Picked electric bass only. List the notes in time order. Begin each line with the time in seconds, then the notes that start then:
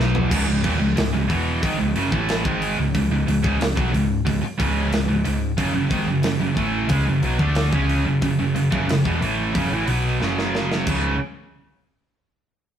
Already playing: B1
0.31 C#1
0.47 C#1
0.64 D#1
0.80 C#1
0.97 C#1
1.13 C#1
1.30 E1
1.63 G#1
1.80 C#1
1.95 F#1
2.12 A1
2.45 G#1
2.77 C#1
2.94 C#1
3.10 C#1
3.27 C#1
3.44 C#1
3.60 C#1
3.77 B1
3.93 C#1
4.27 C#1
4.43 muted picked electric bass stroke
4.60 C#1
4.93 C#1
5.09 C#1
5.26 C#1
5.58 F#1
5.75 F#1
5.91 G#1
6.07 F#1
6.24 F#1
6.40 F#1
6.57 A1
6.90 C#2
7.06 F#1
7.22 B1
7.39 D2
7.72 C#2
8.05 F#1
8.22 F#1
8.39 F#1
8.56 F#1
8.72 F#1
8.89 F#1
9.05 E1
9.22 A1
9.55 F#1
9.72 A1
9.88 B1
10.21 F#1
10.87 C#1